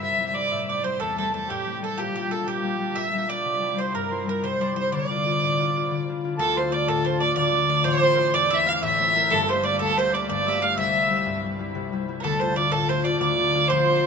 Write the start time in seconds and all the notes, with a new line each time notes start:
Already playing: G3 A#3 C4 D4 E4
0.00 C3 E5
0.19 G3 C4 E4
0.28 E5
0.34 G3 C4 E4 D5
0.51 A2 E5
0.68 G3 A3 C4 D5
0.84 G3 A3 C4 C5
0.99 E2 A4
1.17 G3 A3 C4 A4
1.33 G3 A3 C4 A4
1.48 A2 G4
1.66 G3 A3 C4
1.82 G3 A3 C4 A4
1.97 A#2 G4
2.10 G3 G4
2.15 A#3 D4 G4
2.20 G4
2.30 G3 A#3 D4 A4
2.46 A#2 G4
2.63 G3 A#3 D4
2.79 G3 A#3 D4
2.95 A#2 E5
3.13 G3 A#3 D4
3.29 G3 A#3 D4 D5
3.45 C3
3.62 G3 C4 E4
3.76 G3 C4 C5
3.81 E4 C5
3.94 G2 A#4
4.11 G3 C4 E4 C5
4.27 G3 C4 E4 A#4
4.43 C3 C5
4.60 G3 C4 E4 D5
4.76 G3 C4 E4 C5
4.92 D3 D5
5.09 D4 E4 F4
5.25 D4 E4 F4
5.42 A2
5.59 D4 E4 F4
5.75 D4 E4 F4
5.91 D3
6.08 D4 E4 F4
6.24 D4 E4 F4
6.38 D2 D3 A4
6.57 A3 D4 F4 C5
6.71 A3 D4 F4 D5
6.87 A2 A4
7.05 A3 D4 F4 C5
7.20 A3 D4 F4 D5
7.36 D2 D3 D5
7.52 A3 D4 F4
7.68 A3 D4 F4 D5
7.84 A1 A2 C5
7.98 A3 D5
8.03 C4 E4 C5
8.15 A3 C4 A#4 C5
8.19 E4
8.33 E2 D5
8.50 A3 C4 E4 E5
8.64 A3 C4 F5
8.69 E4 F5
8.81 A1 A2 E5
8.99 A3 C4 E4
9.15 A3 C4 E4 A#4
9.30 G1 G2 A4
9.48 A3 A#3 G4 C5
9.63 A3 A#3 G4 D5
9.79 D2 A4
9.97 A3 A#3 G4 C5
10.13 A3 A#3 G4 D5
10.28 G1 G2 D5
10.46 A3 A#3 G4 E5
10.62 A3 A#3 G4 F5
10.76 C2 C3 E5
10.95 G3 C4 E4
11.10 G3 C4 E4
11.26 G2
11.44 G3 C4 E4
11.59 G3 C4 E4
11.75 C2 C3
11.92 G3 C4 E4
12.08 G3 C4 E4
12.20 D2 D3 A4 A#4
12.40 A3 D4 F4 C5
12.56 A3 D4 F4 D5
12.71 A2 A4
12.89 A3 D4 F4 C5
13.04 A3 D4 F4 D5
13.20 D2 D3 D5
13.38 A3 D4 F4
13.54 A3 D4 F4
13.68 A#1 A#2 C5
13.88 A#3 C4 D4
14.03 A#3 C4 D4